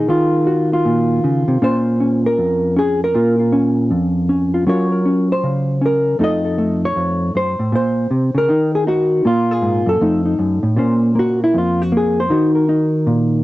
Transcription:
0.00 0.47 G#4 medium
0.08 1.61 D#3 medium
0.08 0.71 F4 medium
0.47 1.60 F#4 medium
0.73 1.62 F4 medium
0.85 1.23 A#2 medium
1.24 1.47 C#3 medium
1.48 1.61 C3 medium
1.62 2.38 A#2 medium
1.62 2.00 C#4 soft
1.62 3.15 F4 soft
1.62 2.25 C5 medium
2.00 2.76 C#4 medium
2.26 2.77 A#4 medium
2.38 3.14 F2 medium
2.76 3.52 C#4 soft
2.76 3.01 G#4 medium
3.04 4.68 A#4 medium
3.14 3.91 A#2 medium
3.14 3.39 F4 soft
3.39 4.54 F4 soft
3.52 4.28 C#4 medium
3.91 4.67 F2 medium
4.29 4.65 C#4 soft
4.54 4.68 F4 soft
4.67 6.18 F#3 medium
4.67 5.04 C#4 soft
4.67 6.20 F4 soft
4.67 4.91 A#4 soft
4.67 5.44 C#5 medium
4.92 5.30 A#4 soft
5.05 5.80 C#4 medium
5.32 5.83 C5 medium
5.43 6.18 C#3 medium
5.81 6.18 C#4 medium
5.86 6.21 A#4 medium
6.19 6.95 F2 medium
6.19 6.57 A3 soft
6.19 7.71 D#4 soft
6.19 6.43 A4 soft
6.24 6.84 D#5 medium
6.45 7.71 A4 soft
6.58 7.71 A3 medium
6.85 7.36 C#5 medium
6.96 7.34 F2 medium
7.35 7.59 F#2 soft
7.35 7.74 C5 medium
7.59 7.73 A2 medium
7.72 8.10 A#2 medium
7.72 8.36 C5 medium
8.11 8.34 C3 medium
8.35 8.49 C#3 medium
8.35 8.74 A#4 medium
8.49 9.25 D#3 medium
8.49 8.86 D#4 soft
8.75 8.88 G#4 medium
8.87 9.23 D#4 medium
8.87 9.26 F#4 medium
9.25 10.01 A#2 medium
9.25 10.00 A#3 soft
9.25 9.89 F4 medium
9.51 9.88 G#4 medium
9.62 9.86 G#2 medium
9.86 10.00 F#2 medium
9.86 10.79 A4 medium
10.01 10.38 F2 medium
10.01 10.76 A3 soft
10.01 10.24 D#4 soft
10.26 10.76 D#4 soft
10.39 10.63 F#2 medium
10.63 10.77 A2 medium
10.76 11.54 A#2 medium
10.76 11.15 A#3 soft
10.76 12.30 C#4 soft
10.76 11.55 C5 soft
11.15 11.92 A#3 medium
11.19 11.42 F#4 medium
11.44 11.56 E4 medium
11.54 12.31 F2 medium
11.54 11.80 F4 medium
11.82 11.94 F#4 medium
11.92 12.30 A#3 medium
11.97 12.19 G#4 medium
12.20 12.55 C5 medium
12.30 13.44 D#3 medium
12.30 12.68 D#4 soft
12.30 13.44 F#4 soft
12.55 13.44 A#4 soft
12.69 13.44 D#4 medium
13.07 13.44 A#2 medium

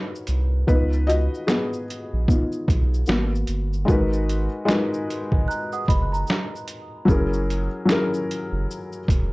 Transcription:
0.00 0.64 B3 medium
0.00 0.24 D#4 medium
0.00 0.69 F#4 medium
0.00 0.69 G#4 medium
0.00 0.70 A#4 medium
0.00 0.24 B4 medium
0.00 0.69 C#5 medium
0.00 0.69 D#5 medium
0.00 0.70 F5 loud
0.15 shaker medium
0.27 0.64 C2 medium
0.27 closed hi-hat medium
0.27 shaker medium
0.67 1.29 C#2 loud
0.67 1.47 B3 medium
0.67 1.05 D#4 medium
0.67 1.84 F4 medium
0.67 1.09 B4 loud
0.67 kick loud
0.67 shaker medium
0.93 shaker soft
1.07 1.17 F#4 medium
1.07 1.16 D#5 loud
1.07 closed hi-hat medium
1.07 shaker soft
1.34 shaker soft
1.47 2.26 B3 medium
1.47 3.03 G#4 medium
1.47 snare loud
1.47 shaker medium
1.73 shaker medium
1.90 closed hi-hat medium
1.90 shaker medium
2.13 2.27 A#1 medium
2.28 2.64 B3 soft
2.28 2.64 D#4 soft
2.28 2.64 F4 medium
2.28 kick medium
2.28 shaker medium
2.52 shaker soft
2.68 3.04 B1 loud
2.68 kick medium
2.68 closed hi-hat medium
2.68 shaker soft
2.94 shaker medium
3.06 3.44 G#1 loud
3.06 3.84 A#3 medium
3.06 3.84 B3 soft
3.06 3.84 F#4 medium
3.06 snare loud
3.06 shaker medium
3.35 shaker soft
3.47 3.84 G1 medium
3.47 closed hi-hat medium
3.47 shaker medium
3.73 shaker soft
3.85 4.49 G#1 loud
3.85 4.45 G#3 medium
3.85 4.46 D#4 medium
3.85 4.47 F#4 medium
3.85 kick loud
3.85 shaker medium
3.90 4.47 A#4 medium
3.90 4.48 B4 medium
4.13 shaker soft
4.29 closed hi-hat medium
4.29 shaker soft
4.65 5.79 G#3 loud
4.65 5.80 D#4 medium
4.65 5.81 F#4 medium
4.65 snare loud
4.70 5.82 A#4 medium
4.70 5.83 B4 medium
4.70 shaker medium
4.94 shaker medium
5.10 closed hi-hat medium
5.10 shaker soft
5.32 5.46 G#1 loud
5.32 kick medium
5.48 5.72 A#5 medium
5.48 5.71 F#6 medium
5.48 shaker medium
5.72 5.88 F#5 medium
5.72 5.87 D#6 medium
5.72 shaker soft
5.88 6.24 F#1 medium
5.88 6.12 D#5 medium
5.88 6.11 B5 medium
5.88 kick medium
5.88 closed hi-hat medium
5.88 shaker soft
6.12 7.04 A#5 medium
6.12 shaker medium
6.27 snare loud
6.27 shaker medium
6.56 shaker soft
6.68 closed hi-hat medium
6.68 shaker medium
7.05 7.69 F#1 loud
7.05 7.65 F#3 medium
7.05 7.66 C#4 medium
7.05 7.67 E4 medium
7.05 kick loud
7.05 shaker medium
7.10 7.68 G#4 medium
7.10 7.68 A#4 loud
7.33 shaker soft
7.50 closed hi-hat medium
7.50 shaker soft
7.85 8.99 F#3 medium
7.85 9.00 C#4 medium
7.85 9.01 E4 medium
7.85 snare loud
7.90 9.02 G#4 medium
7.90 9.03 A#4 loud
7.90 shaker medium
8.14 shaker medium
8.31 closed hi-hat medium
8.31 shaker soft
8.52 8.66 F#1 medium
8.71 shaker medium
8.92 shaker soft
9.08 9.33 E1 loud
9.08 kick medium
9.08 closed hi-hat medium
9.08 shaker soft

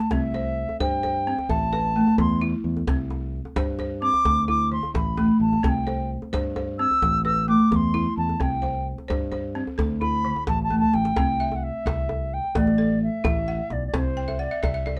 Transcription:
0.00 0.12 A3 medium
0.00 0.13 A5 medium
0.11 0.64 C2 medium
0.11 0.58 C4 medium
0.11 0.80 E5 medium
0.11 djembe slap medium
0.11 djembe bass medium
0.23 djembe slap soft
0.34 0.79 C5 medium
0.34 djembe tone medium
0.69 djembe tone soft
0.80 1.33 G2 loud
0.80 1.02 C5 medium
0.80 1.51 G5 loud
0.80 djembe slap medium
0.80 djembe bass medium
1.03 1.72 C5 medium
1.03 djembe tone medium
1.27 1.50 C4 medium
1.38 djembe tone medium
1.49 2.01 A1 medium
1.49 2.19 E5 medium
1.49 2.19 A5 loud
1.49 djembe slap medium
1.49 djembe bass medium
1.73 2.42 B4 medium
1.73 djembe tone medium
1.96 2.42 A3 medium
2.07 djembe tone soft
2.18 2.53 E2 loud
2.18 2.41 C6 medium
2.18 djembe slap medium
2.18 djembe bass medium
2.41 2.88 E4 medium
2.64 2.82 E2 medium
2.77 djembe tone medium
2.87 3.40 C2 medium
2.87 3.34 C4 medium
2.87 djembe slap medium
2.87 djembe bass medium
2.99 djembe slap soft
3.10 djembe tone medium
3.45 djembe tone medium
3.56 4.09 G2 medium
3.56 3.78 C5 medium
3.56 djembe slap medium
3.56 djembe bass medium
3.79 4.49 C5 medium
3.79 djembe tone medium
4.02 4.25 C4 medium
4.02 4.45 D6 loud
4.13 djembe tone medium
4.25 4.78 D2 loud
4.25 djembe slap medium
4.25 djembe bass medium
4.48 5.17 E4 medium
4.48 4.70 D6 loud
4.48 djembe tone medium
4.72 5.18 D3 medium
4.72 4.94 C6 medium
4.83 djembe tone medium
4.94 5.29 A1 loud
4.94 5.38 B5 medium
4.94 djembe slap medium
4.94 djembe bass medium
5.17 5.64 A3 medium
5.17 djembe tone medium
5.40 5.58 A1 medium
5.40 5.65 A5 medium
5.53 djembe tone medium
5.63 6.16 C2 medium
5.63 6.10 C4 medium
5.63 5.70 A5 medium
5.63 djembe slap medium
5.63 djembe bass medium
5.69 6.10 G5 medium
5.76 djembe slap soft
5.87 6.32 C5 medium
5.87 djembe tone medium
6.22 djembe tone soft
6.33 6.85 G2 medium
6.33 6.55 C5 medium
6.33 djembe slap medium
6.33 djembe bass medium
6.56 7.25 C5 medium
6.56 djembe tone medium
6.79 7.02 C4 medium
6.79 7.22 E6 loud
6.91 djembe tone medium
7.02 7.54 A1 loud
7.02 djembe slap medium
7.02 djembe bass medium
7.25 7.94 B4 medium
7.25 7.46 E6 loud
7.25 djembe tone medium
7.48 7.94 A3 medium
7.48 7.71 D6 medium
7.60 djembe tone soft
7.71 8.06 E2 loud
7.71 7.77 D6 medium
7.71 djembe slap medium
7.71 djembe bass medium
7.76 8.17 C6 medium
7.94 8.40 E4 medium
7.94 djembe tone medium
8.17 8.35 E2 medium
8.17 8.43 A5 medium
8.29 djembe tone soft
8.40 8.92 C2 medium
8.40 8.86 C4 medium
8.40 8.87 G5 medium
8.40 djembe slap medium
8.40 djembe bass medium
8.62 9.07 C5 medium
8.62 djembe tone medium
8.98 djembe tone medium
9.08 9.62 G2 medium
9.08 9.30 C5 medium
9.08 djembe slap medium
9.08 djembe bass medium
9.32 10.01 C5 medium
9.32 djembe slap soft
9.32 djembe tone medium
9.55 9.78 C4 medium
9.67 djembe tone medium
9.78 10.31 D2 medium
9.78 10.47 A4 medium
9.78 djembe slap medium
9.78 djembe bass medium
10.01 10.70 E4 medium
10.01 10.44 B5 loud
10.01 djembe tone medium
10.25 10.71 D3 medium
10.36 djembe tone medium
10.47 10.83 A1 loud
10.47 10.62 A5 medium
10.47 djembe slap medium
10.47 djembe bass medium
10.63 10.78 A5 medium
10.70 11.17 A3 medium
10.70 djembe bass soft
10.79 10.96 A5 medium
10.79 djembe bass soft
10.93 11.12 A1 medium
10.93 11.58 G5 loud
10.93 djembe slap soft
11.05 djembe slap medium
11.16 11.69 C2 medium
11.16 11.63 C4 medium
11.16 djembe slap medium
11.16 djembe bass medium
11.40 11.85 E5 medium
11.40 djembe slap soft
11.52 djembe tone medium
11.56 11.65 F#5 medium
11.63 12.35 E5 loud
11.85 12.38 C2 medium
11.85 12.32 E5 medium
11.85 djembe slap medium
11.85 djembe bass medium
12.09 djembe tone medium
12.34 12.58 G5 medium
12.44 djembe slap soft
12.55 13.08 A1 medium
12.55 13.01 A3 medium
12.55 13.02 D5 medium
12.55 djembe slap medium
12.55 djembe bass medium
12.67 djembe tone medium
12.78 13.47 A4 medium
13.03 13.74 E5 medium
13.24 13.60 A1 medium
13.24 13.70 E4 medium
13.24 djembe slap medium
13.24 djembe tone medium
13.24 djembe bass medium
13.48 14.17 F#5 medium
13.48 djembe slap soft
13.70 13.88 B1 medium
13.70 13.87 D5 medium
13.70 djembe tone medium
13.87 13.96 D5 medium
13.94 14.46 C2 medium
13.94 14.40 C4 medium
13.94 14.41 C5 medium
13.94 djembe slap medium
13.94 djembe bass medium
14.17 14.38 G5 medium
14.28 14.50 E5 medium
14.28 djembe tone medium
14.39 14.64 D5 medium
14.39 14.61 F#5 medium
14.51 14.62 E5 medium
14.62 14.99 C2 medium
14.62 14.84 D5 medium
14.62 14.99 E5 medium
14.62 14.73 E5 medium
14.62 djembe slap medium
14.62 djembe bass medium
14.74 14.96 E5 medium
14.86 14.99 D5 medium
14.86 djembe tone medium

